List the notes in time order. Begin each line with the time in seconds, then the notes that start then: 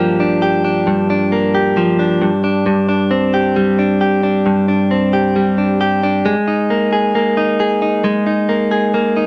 Already playing: G2 F3 A#3 D4 G4
0.20 D4
0.42 G4
0.65 D4
0.87 G2
1.10 D4
1.32 A#3
1.55 G4
1.77 F3
1.99 D4
2.22 G2
2.44 D4
2.66 G2
2.89 D4
3.11 C4
3.34 G4
3.56 G3
3.79 D4
4.01 G4
4.23 D4
4.46 G2
4.68 D4
4.91 C4
5.13 G4
5.36 G3
5.58 D4
5.81 G4
6.03 D4
6.25 G#3
6.48 D#4
6.70 A#3
6.93 G#4
7.15 A#3
7.37 D#4
7.60 G#4
7.82 D#4
8.04 G#3
8.27 D#4
8.49 A#3
8.71 G#4
8.94 A#3
9.17 D#4